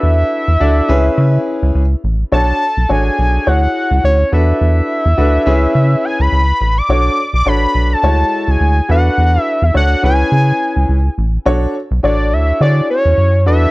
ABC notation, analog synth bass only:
X:1
M:4/4
L:1/16
Q:"Swing 16ths" 1/4=105
K:C#phr
V:1 name="Analog synth bass" clef=bass
E,,2 z E,, D,,2 C,,2 C,2 z C,, C,,2 A,,,2 | B,,,2 z B,,, A,,,2 B,,,2 D,,2 z C,, D,,2 E,,2 | E,,2 z E,, D,,2 C,,2 C,2 z C,, C,,2 A,,,2 | B,,,2 z B,,, A,,,2 B,,,2 D,,2 z C,, D,,2 E,,2 |
E,,2 z E,, D,,2 C,,2 C,2 z C,, C,,2 A,,,2 | B,,,2 z B,,, A,,,2 D,,2 D,2 z E,, F,,2 E,,2 |]